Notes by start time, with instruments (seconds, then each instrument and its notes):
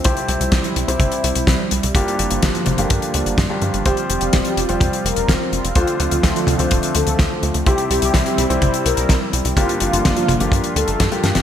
Already playing: analog synth pad C4
0.04 analog synth bass C2, grand piano C3 C4 E4 G4 C5, analog synth pad G3 E4, kick, closed hi-hat
0.17 closed hi-hat
0.28 analog synth bass C2, closed hi-hat
0.41 analog synth bass C2, closed hi-hat
0.52 analog synth bass C2, kick, snare, closed hi-hat
0.64 closed hi-hat
0.76 analog synth bass C2, closed hi-hat
0.88 analog synth bass C2, grand piano C3 C4 E4 G4 C5, closed hi-hat
1.00 analog synth bass G1, kick, closed hi-hat, high tom
1.12 closed hi-hat
1.24 analog synth bass C2, closed hi-hat
1.35 analog synth bass C2, closed hi-hat
1.47 analog synth bass C2, kick, snare, closed hi-hat
1.71 analog synth bass C2, closed hi-hat
1.83 analog synth bass C2, closed hi-hat
1.95 analog synth bass G1, grand piano G2 A#3 D4 F4 G4, analog synth pad D3 F3 A#3 F4, kick, closed hi-hat
2.08 closed hi-hat
2.19 analog synth bass G1, closed hi-hat
2.31 analog synth bass G1, closed hi-hat
2.43 analog synth bass G1, kick, snare, closed hi-hat
2.55 closed hi-hat
2.66 analog synth bass G1, closed hi-hat, high tom
2.78 analog synth bass G1, grand piano G2 A#3 D4 F4 G4, closed hi-hat
2.90 analog synth bass G2, kick, closed hi-hat
3.02 closed hi-hat
3.14 analog synth bass D2, closed hi-hat
3.26 analog synth bass G1, closed hi-hat
3.38 analog synth bass G2, kick, snare, closed hi-hat
3.50 grand piano G2 A#3 D4 F4 G4
3.62 analog synth bass G2, closed hi-hat
3.74 analog synth bass G1, closed hi-hat
3.85 analog synth bass F1, grand piano F3 C4 F4 G4 C5, analog synth pad G3 C4, analog polysynth G4, kick, closed hi-hat
3.97 closed hi-hat
4.09 analog synth bass F1, analog polysynth G4, closed hi-hat
4.21 analog synth bass F1, closed hi-hat
4.33 analog synth bass F1, kick, snare, closed hi-hat
4.45 analog polysynth G4, closed hi-hat
4.57 analog synth bass F1, closed hi-hat
4.69 analog synth bass F1, grand piano F3 C4 F4 G4 C5, closed hi-hat
4.80 analog synth bass F2, kick, closed hi-hat, high tom
4.93 closed hi-hat
5.05 analog synth bass F1, analog polysynth A#4, closed hi-hat
5.16 analog synth bass F1, closed hi-hat
5.28 analog synth bass F1, kick, snare, closed hi-hat
5.52 analog synth bass F1, closed hi-hat
5.64 analog synth bass F1, closed hi-hat
5.75 analog synth bass D2, grand piano D3 D4 F4 A4 C5, analog synth pad D3 F3 A3, analog polysynth F4, kick, closed hi-hat
5.87 closed hi-hat
6.00 analog synth bass D2, analog polysynth F4, closed hi-hat
6.11 analog synth bass D2, closed hi-hat
6.23 analog synth bass D2, kick, snare, closed hi-hat
6.36 analog polysynth F4, closed hi-hat
6.47 analog synth bass D2, closed hi-hat, high tom
6.59 analog synth bass D2, grand piano D3 D4 F4 A4 C5, closed hi-hat
6.71 analog synth bass D1, kick, closed hi-hat
6.83 closed hi-hat
6.95 analog synth bass D2, analog polysynth A4, closed hi-hat
7.07 analog synth bass D2, closed hi-hat
7.19 analog synth bass D2, kick, snare, closed hi-hat
7.43 analog synth bass D2, closed hi-hat
7.54 analog synth bass D2, closed hi-hat
7.66 analog synth bass C2, grand piano C3 C4 E4 G4 C5, analog synth pad G3 C4 E4, analog polysynth G4, kick, closed hi-hat
7.78 closed hi-hat
7.90 analog synth bass C2, analog polysynth G4, closed hi-hat
8.02 analog synth bass C2, closed hi-hat
8.14 analog synth bass C2, kick, snare, closed hi-hat
8.26 analog polysynth G4, closed hi-hat
8.38 analog synth bass C2, closed hi-hat
8.50 analog synth bass C2, grand piano C3 C4 E4 G4 C5, closed hi-hat
8.62 analog synth bass G1, kick, closed hi-hat, high tom
8.74 closed hi-hat
8.86 analog synth bass C2, analog polysynth A#4, closed hi-hat
8.97 analog synth bass C2, closed hi-hat
9.09 analog synth bass C2, kick, snare, closed hi-hat
9.33 analog synth bass C2, closed hi-hat
9.45 analog synth bass C2, closed hi-hat
9.57 analog synth bass G1, grand piano G2 A#3 D4 F4 G4, analog synth pad D3 F3 A#3 F4, analog polysynth F4, kick, closed hi-hat
9.69 closed hi-hat
9.80 analog synth bass G1, analog polysynth F4, closed hi-hat
9.93 analog synth bass G1, closed hi-hat
10.05 analog synth bass G1, kick, snare, closed hi-hat
10.16 analog polysynth F4, closed hi-hat
10.28 analog synth bass G1, closed hi-hat, high tom
10.40 analog synth bass G1, grand piano G2 A#3 D4 F4 G4, closed hi-hat
10.52 analog synth bass G2, kick, closed hi-hat
10.64 closed hi-hat
10.76 analog synth bass D2, analog polysynth A4, closed hi-hat
10.88 analog synth bass G1, closed hi-hat
11.00 analog synth bass G2, kick, snare, closed hi-hat
11.12 grand piano G2 A#3 D4 F4 G4, closed hi-hat
11.24 analog synth bass G2, snare, closed hi-hat
11.35 analog synth bass G1, snare, closed hi-hat